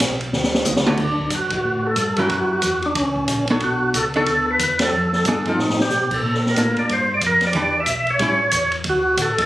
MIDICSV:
0, 0, Header, 1, 5, 480
1, 0, Start_track
1, 0, Key_signature, 2, "major"
1, 0, Tempo, 327690
1, 1460, Time_signature, 4, 2, 24, 8
1, 13854, End_track
2, 0, Start_track
2, 0, Title_t, "Tonewheel organ"
2, 0, Program_c, 0, 16
2, 1464, Note_on_c, 0, 62, 72
2, 1908, Note_off_c, 0, 62, 0
2, 1978, Note_on_c, 0, 66, 73
2, 2253, Note_off_c, 0, 66, 0
2, 2270, Note_on_c, 0, 66, 74
2, 2734, Note_on_c, 0, 69, 89
2, 2746, Note_off_c, 0, 66, 0
2, 3171, Note_off_c, 0, 69, 0
2, 3209, Note_on_c, 0, 66, 76
2, 3669, Note_off_c, 0, 66, 0
2, 3686, Note_on_c, 0, 66, 82
2, 4128, Note_off_c, 0, 66, 0
2, 4186, Note_on_c, 0, 62, 74
2, 4342, Note_on_c, 0, 61, 78
2, 4344, Note_off_c, 0, 62, 0
2, 5062, Note_off_c, 0, 61, 0
2, 5331, Note_on_c, 0, 66, 77
2, 5804, Note_on_c, 0, 69, 89
2, 5810, Note_off_c, 0, 66, 0
2, 5932, Note_off_c, 0, 69, 0
2, 6104, Note_on_c, 0, 69, 89
2, 6537, Note_off_c, 0, 69, 0
2, 6603, Note_on_c, 0, 71, 92
2, 7028, Note_off_c, 0, 71, 0
2, 7064, Note_on_c, 0, 69, 71
2, 7544, Note_off_c, 0, 69, 0
2, 7562, Note_on_c, 0, 69, 78
2, 8033, Note_off_c, 0, 69, 0
2, 8045, Note_on_c, 0, 65, 73
2, 8211, Note_off_c, 0, 65, 0
2, 8231, Note_on_c, 0, 63, 77
2, 8482, Note_off_c, 0, 63, 0
2, 8524, Note_on_c, 0, 67, 90
2, 8994, Note_off_c, 0, 67, 0
2, 8995, Note_on_c, 0, 69, 75
2, 9423, Note_off_c, 0, 69, 0
2, 9508, Note_on_c, 0, 70, 92
2, 9945, Note_on_c, 0, 74, 85
2, 9965, Note_off_c, 0, 70, 0
2, 10121, Note_off_c, 0, 74, 0
2, 10147, Note_on_c, 0, 72, 96
2, 10427, Note_off_c, 0, 72, 0
2, 10463, Note_on_c, 0, 74, 88
2, 10531, Note_off_c, 0, 74, 0
2, 10643, Note_on_c, 0, 70, 78
2, 10914, Note_off_c, 0, 70, 0
2, 10938, Note_on_c, 0, 74, 72
2, 11097, Note_off_c, 0, 74, 0
2, 11167, Note_on_c, 0, 74, 94
2, 11416, Note_off_c, 0, 74, 0
2, 11430, Note_on_c, 0, 76, 100
2, 11869, Note_on_c, 0, 73, 107
2, 11886, Note_off_c, 0, 76, 0
2, 12753, Note_off_c, 0, 73, 0
2, 13029, Note_on_c, 0, 66, 83
2, 13497, Note_off_c, 0, 66, 0
2, 13505, Note_on_c, 0, 69, 90
2, 13784, Note_off_c, 0, 69, 0
2, 13802, Note_on_c, 0, 69, 115
2, 13854, Note_off_c, 0, 69, 0
2, 13854, End_track
3, 0, Start_track
3, 0, Title_t, "Hollow-body jazz guitar"
3, 0, Program_c, 1, 26
3, 1265, Note_on_c, 1, 50, 85
3, 1277, Note_on_c, 1, 57, 90
3, 1282, Note_on_c, 1, 59, 91
3, 1289, Note_on_c, 1, 66, 84
3, 1437, Note_off_c, 1, 50, 0
3, 1443, Note_off_c, 1, 57, 0
3, 1445, Note_off_c, 1, 59, 0
3, 1448, Note_off_c, 1, 66, 0
3, 3193, Note_on_c, 1, 54, 53
3, 3211, Note_on_c, 1, 61, 54
3, 3213, Note_on_c, 1, 64, 60
3, 3220, Note_on_c, 1, 70, 63
3, 3822, Note_off_c, 1, 54, 0
3, 3831, Note_off_c, 1, 61, 0
3, 3833, Note_off_c, 1, 64, 0
3, 3836, Note_off_c, 1, 70, 0
3, 5134, Note_on_c, 1, 59, 63
3, 5135, Note_on_c, 1, 62, 62
3, 5146, Note_on_c, 1, 73, 71
3, 5151, Note_on_c, 1, 69, 76
3, 5753, Note_off_c, 1, 59, 0
3, 5754, Note_off_c, 1, 62, 0
3, 5759, Note_off_c, 1, 73, 0
3, 5762, Note_off_c, 1, 69, 0
3, 6090, Note_on_c, 1, 62, 66
3, 6092, Note_on_c, 1, 59, 59
3, 6101, Note_on_c, 1, 73, 67
3, 6102, Note_on_c, 1, 69, 73
3, 6712, Note_off_c, 1, 62, 0
3, 6713, Note_off_c, 1, 59, 0
3, 6717, Note_off_c, 1, 73, 0
3, 6718, Note_off_c, 1, 69, 0
3, 7728, Note_on_c, 1, 52, 52
3, 7734, Note_on_c, 1, 59, 49
3, 7741, Note_on_c, 1, 62, 62
3, 7745, Note_on_c, 1, 68, 55
3, 7980, Note_off_c, 1, 52, 0
3, 7983, Note_off_c, 1, 59, 0
3, 7987, Note_off_c, 1, 62, 0
3, 7989, Note_off_c, 1, 68, 0
3, 8007, Note_on_c, 1, 53, 56
3, 8023, Note_on_c, 1, 60, 52
3, 8028, Note_on_c, 1, 63, 64
3, 8030, Note_on_c, 1, 69, 68
3, 8423, Note_off_c, 1, 53, 0
3, 8431, Note_off_c, 1, 60, 0
3, 8433, Note_off_c, 1, 63, 0
3, 8434, Note_off_c, 1, 69, 0
3, 9630, Note_on_c, 1, 62, 49
3, 9633, Note_on_c, 1, 58, 44
3, 9637, Note_on_c, 1, 65, 51
3, 9648, Note_on_c, 1, 69, 44
3, 10341, Note_off_c, 1, 62, 0
3, 10343, Note_off_c, 1, 58, 0
3, 10345, Note_off_c, 1, 65, 0
3, 10350, Note_off_c, 1, 69, 0
3, 11059, Note_on_c, 1, 52, 66
3, 11069, Note_on_c, 1, 62, 57
3, 11074, Note_on_c, 1, 67, 65
3, 11076, Note_on_c, 1, 71, 62
3, 11325, Note_off_c, 1, 52, 0
3, 11330, Note_off_c, 1, 62, 0
3, 11332, Note_off_c, 1, 67, 0
3, 11334, Note_off_c, 1, 71, 0
3, 12010, Note_on_c, 1, 55, 46
3, 12036, Note_on_c, 1, 61, 47
3, 12042, Note_on_c, 1, 64, 59
3, 12280, Note_off_c, 1, 55, 0
3, 12293, Note_off_c, 1, 61, 0
3, 12296, Note_off_c, 1, 64, 0
3, 13854, End_track
4, 0, Start_track
4, 0, Title_t, "Tonewheel organ"
4, 0, Program_c, 2, 16
4, 1, Note_on_c, 2, 35, 106
4, 476, Note_off_c, 2, 35, 0
4, 481, Note_on_c, 2, 38, 88
4, 952, Note_on_c, 2, 37, 100
4, 956, Note_off_c, 2, 38, 0
4, 1431, Note_off_c, 2, 37, 0
4, 1433, Note_on_c, 2, 38, 71
4, 1911, Note_off_c, 2, 38, 0
4, 1914, Note_on_c, 2, 42, 78
4, 2193, Note_off_c, 2, 42, 0
4, 2211, Note_on_c, 2, 42, 34
4, 2309, Note_off_c, 2, 42, 0
4, 2405, Note_on_c, 2, 45, 72
4, 2876, Note_on_c, 2, 43, 79
4, 2878, Note_off_c, 2, 45, 0
4, 3353, Note_off_c, 2, 43, 0
4, 3363, Note_on_c, 2, 42, 80
4, 3837, Note_off_c, 2, 42, 0
4, 3842, Note_on_c, 2, 40, 89
4, 4317, Note_off_c, 2, 40, 0
4, 4321, Note_on_c, 2, 37, 70
4, 4796, Note_off_c, 2, 37, 0
4, 4805, Note_on_c, 2, 34, 78
4, 5278, Note_off_c, 2, 34, 0
4, 5288, Note_on_c, 2, 35, 81
4, 5760, Note_off_c, 2, 35, 0
4, 5767, Note_on_c, 2, 37, 84
4, 6239, Note_off_c, 2, 37, 0
4, 6250, Note_on_c, 2, 38, 75
4, 6721, Note_off_c, 2, 38, 0
4, 6730, Note_on_c, 2, 40, 76
4, 7201, Note_off_c, 2, 40, 0
4, 7220, Note_on_c, 2, 41, 80
4, 7687, Note_off_c, 2, 41, 0
4, 7696, Note_on_c, 2, 43, 89
4, 8165, Note_off_c, 2, 43, 0
4, 8171, Note_on_c, 2, 45, 77
4, 8642, Note_off_c, 2, 45, 0
4, 8654, Note_on_c, 2, 47, 80
4, 9124, Note_off_c, 2, 47, 0
4, 9132, Note_on_c, 2, 46, 86
4, 9602, Note_off_c, 2, 46, 0
4, 9613, Note_on_c, 2, 45, 84
4, 9888, Note_off_c, 2, 45, 0
4, 9906, Note_on_c, 2, 45, 31
4, 10001, Note_off_c, 2, 45, 0
4, 10090, Note_on_c, 2, 43, 75
4, 10561, Note_off_c, 2, 43, 0
4, 10567, Note_on_c, 2, 41, 82
4, 11039, Note_off_c, 2, 41, 0
4, 11047, Note_on_c, 2, 40, 77
4, 11519, Note_off_c, 2, 40, 0
4, 11521, Note_on_c, 2, 35, 86
4, 11996, Note_off_c, 2, 35, 0
4, 12009, Note_on_c, 2, 33, 72
4, 12480, Note_off_c, 2, 33, 0
4, 12482, Note_on_c, 2, 40, 87
4, 12956, Note_off_c, 2, 40, 0
4, 12960, Note_on_c, 2, 38, 89
4, 13435, Note_off_c, 2, 38, 0
4, 13446, Note_on_c, 2, 33, 95
4, 13854, Note_off_c, 2, 33, 0
4, 13854, End_track
5, 0, Start_track
5, 0, Title_t, "Drums"
5, 6, Note_on_c, 9, 38, 77
5, 7, Note_on_c, 9, 36, 24
5, 152, Note_off_c, 9, 38, 0
5, 154, Note_off_c, 9, 36, 0
5, 302, Note_on_c, 9, 51, 45
5, 449, Note_off_c, 9, 51, 0
5, 486, Note_on_c, 9, 38, 59
5, 632, Note_off_c, 9, 38, 0
5, 642, Note_on_c, 9, 38, 63
5, 788, Note_off_c, 9, 38, 0
5, 797, Note_on_c, 9, 38, 86
5, 943, Note_off_c, 9, 38, 0
5, 949, Note_on_c, 9, 44, 68
5, 956, Note_on_c, 9, 47, 84
5, 1095, Note_off_c, 9, 44, 0
5, 1102, Note_off_c, 9, 47, 0
5, 1117, Note_on_c, 9, 38, 90
5, 1264, Note_off_c, 9, 38, 0
5, 1265, Note_on_c, 9, 47, 117
5, 1411, Note_off_c, 9, 47, 0
5, 1427, Note_on_c, 9, 49, 72
5, 1439, Note_on_c, 9, 36, 57
5, 1573, Note_off_c, 9, 49, 0
5, 1585, Note_off_c, 9, 36, 0
5, 1735, Note_on_c, 9, 36, 51
5, 1881, Note_off_c, 9, 36, 0
5, 1908, Note_on_c, 9, 44, 56
5, 1908, Note_on_c, 9, 51, 67
5, 1920, Note_on_c, 9, 36, 20
5, 2055, Note_off_c, 9, 44, 0
5, 2055, Note_off_c, 9, 51, 0
5, 2067, Note_off_c, 9, 36, 0
5, 2202, Note_on_c, 9, 51, 57
5, 2215, Note_on_c, 9, 36, 59
5, 2348, Note_off_c, 9, 51, 0
5, 2361, Note_off_c, 9, 36, 0
5, 2870, Note_on_c, 9, 44, 54
5, 2870, Note_on_c, 9, 51, 60
5, 2884, Note_on_c, 9, 36, 19
5, 3017, Note_off_c, 9, 44, 0
5, 3017, Note_off_c, 9, 51, 0
5, 3030, Note_off_c, 9, 36, 0
5, 3171, Note_on_c, 9, 51, 44
5, 3318, Note_off_c, 9, 51, 0
5, 3362, Note_on_c, 9, 51, 51
5, 3367, Note_on_c, 9, 36, 19
5, 3508, Note_off_c, 9, 51, 0
5, 3513, Note_off_c, 9, 36, 0
5, 3835, Note_on_c, 9, 44, 52
5, 3835, Note_on_c, 9, 51, 60
5, 3845, Note_on_c, 9, 36, 18
5, 3981, Note_off_c, 9, 44, 0
5, 3981, Note_off_c, 9, 51, 0
5, 3992, Note_off_c, 9, 36, 0
5, 4137, Note_on_c, 9, 51, 32
5, 4283, Note_off_c, 9, 51, 0
5, 4324, Note_on_c, 9, 51, 65
5, 4328, Note_on_c, 9, 36, 21
5, 4471, Note_off_c, 9, 51, 0
5, 4475, Note_off_c, 9, 36, 0
5, 4625, Note_on_c, 9, 36, 48
5, 4772, Note_off_c, 9, 36, 0
5, 4800, Note_on_c, 9, 44, 46
5, 4800, Note_on_c, 9, 51, 61
5, 4808, Note_on_c, 9, 36, 23
5, 4947, Note_off_c, 9, 44, 0
5, 4947, Note_off_c, 9, 51, 0
5, 4955, Note_off_c, 9, 36, 0
5, 5090, Note_on_c, 9, 51, 44
5, 5236, Note_off_c, 9, 51, 0
5, 5279, Note_on_c, 9, 51, 47
5, 5289, Note_on_c, 9, 36, 21
5, 5426, Note_off_c, 9, 51, 0
5, 5435, Note_off_c, 9, 36, 0
5, 5771, Note_on_c, 9, 44, 62
5, 5771, Note_on_c, 9, 51, 58
5, 5772, Note_on_c, 9, 36, 17
5, 5918, Note_off_c, 9, 36, 0
5, 5918, Note_off_c, 9, 44, 0
5, 5918, Note_off_c, 9, 51, 0
5, 6062, Note_on_c, 9, 51, 33
5, 6209, Note_off_c, 9, 51, 0
5, 6245, Note_on_c, 9, 51, 51
5, 6253, Note_on_c, 9, 36, 21
5, 6392, Note_off_c, 9, 51, 0
5, 6400, Note_off_c, 9, 36, 0
5, 6729, Note_on_c, 9, 44, 48
5, 6729, Note_on_c, 9, 51, 68
5, 6737, Note_on_c, 9, 36, 18
5, 6876, Note_off_c, 9, 44, 0
5, 6876, Note_off_c, 9, 51, 0
5, 6883, Note_off_c, 9, 36, 0
5, 7017, Note_on_c, 9, 51, 63
5, 7024, Note_on_c, 9, 38, 68
5, 7163, Note_off_c, 9, 51, 0
5, 7170, Note_off_c, 9, 38, 0
5, 7510, Note_on_c, 9, 38, 31
5, 7657, Note_off_c, 9, 38, 0
5, 7689, Note_on_c, 9, 44, 43
5, 7689, Note_on_c, 9, 51, 64
5, 7698, Note_on_c, 9, 36, 22
5, 7835, Note_off_c, 9, 44, 0
5, 7835, Note_off_c, 9, 51, 0
5, 7845, Note_off_c, 9, 36, 0
5, 7990, Note_on_c, 9, 51, 36
5, 8136, Note_off_c, 9, 51, 0
5, 8190, Note_on_c, 9, 38, 42
5, 8336, Note_off_c, 9, 38, 0
5, 8347, Note_on_c, 9, 38, 53
5, 8494, Note_off_c, 9, 38, 0
5, 8500, Note_on_c, 9, 38, 75
5, 8641, Note_on_c, 9, 44, 48
5, 8646, Note_off_c, 9, 38, 0
5, 8648, Note_on_c, 9, 38, 56
5, 8787, Note_off_c, 9, 44, 0
5, 8795, Note_off_c, 9, 38, 0
5, 8949, Note_on_c, 9, 49, 64
5, 8953, Note_on_c, 9, 36, 63
5, 9096, Note_off_c, 9, 49, 0
5, 9099, Note_off_c, 9, 36, 0
5, 9138, Note_on_c, 9, 36, 22
5, 9285, Note_off_c, 9, 36, 0
5, 9293, Note_on_c, 9, 38, 27
5, 9440, Note_off_c, 9, 38, 0
5, 9465, Note_on_c, 9, 38, 43
5, 9612, Note_off_c, 9, 38, 0
5, 9613, Note_on_c, 9, 44, 52
5, 9613, Note_on_c, 9, 51, 63
5, 9621, Note_on_c, 9, 36, 24
5, 9759, Note_off_c, 9, 44, 0
5, 9759, Note_off_c, 9, 51, 0
5, 9768, Note_off_c, 9, 36, 0
5, 9910, Note_on_c, 9, 51, 37
5, 10056, Note_off_c, 9, 51, 0
5, 10098, Note_on_c, 9, 51, 57
5, 10100, Note_on_c, 9, 36, 26
5, 10244, Note_off_c, 9, 51, 0
5, 10246, Note_off_c, 9, 36, 0
5, 10566, Note_on_c, 9, 44, 49
5, 10566, Note_on_c, 9, 51, 65
5, 10574, Note_on_c, 9, 36, 22
5, 10712, Note_off_c, 9, 44, 0
5, 10712, Note_off_c, 9, 51, 0
5, 10720, Note_off_c, 9, 36, 0
5, 10850, Note_on_c, 9, 51, 43
5, 10858, Note_on_c, 9, 38, 36
5, 10997, Note_off_c, 9, 51, 0
5, 11004, Note_off_c, 9, 38, 0
5, 11030, Note_on_c, 9, 51, 59
5, 11047, Note_on_c, 9, 36, 20
5, 11177, Note_off_c, 9, 51, 0
5, 11194, Note_off_c, 9, 36, 0
5, 11514, Note_on_c, 9, 44, 53
5, 11514, Note_on_c, 9, 51, 59
5, 11527, Note_on_c, 9, 36, 23
5, 11660, Note_off_c, 9, 44, 0
5, 11660, Note_off_c, 9, 51, 0
5, 11673, Note_off_c, 9, 36, 0
5, 11816, Note_on_c, 9, 51, 31
5, 11963, Note_off_c, 9, 51, 0
5, 12000, Note_on_c, 9, 51, 56
5, 12008, Note_on_c, 9, 36, 26
5, 12146, Note_off_c, 9, 51, 0
5, 12155, Note_off_c, 9, 36, 0
5, 12472, Note_on_c, 9, 44, 57
5, 12472, Note_on_c, 9, 51, 65
5, 12485, Note_on_c, 9, 36, 23
5, 12619, Note_off_c, 9, 44, 0
5, 12619, Note_off_c, 9, 51, 0
5, 12632, Note_off_c, 9, 36, 0
5, 12768, Note_on_c, 9, 51, 40
5, 12914, Note_off_c, 9, 51, 0
5, 12949, Note_on_c, 9, 51, 55
5, 12965, Note_on_c, 9, 36, 24
5, 13096, Note_off_c, 9, 51, 0
5, 13112, Note_off_c, 9, 36, 0
5, 13438, Note_on_c, 9, 44, 54
5, 13438, Note_on_c, 9, 51, 68
5, 13447, Note_on_c, 9, 36, 17
5, 13585, Note_off_c, 9, 44, 0
5, 13585, Note_off_c, 9, 51, 0
5, 13594, Note_off_c, 9, 36, 0
5, 13744, Note_on_c, 9, 51, 53
5, 13746, Note_on_c, 9, 36, 64
5, 13854, Note_off_c, 9, 36, 0
5, 13854, Note_off_c, 9, 51, 0
5, 13854, End_track
0, 0, End_of_file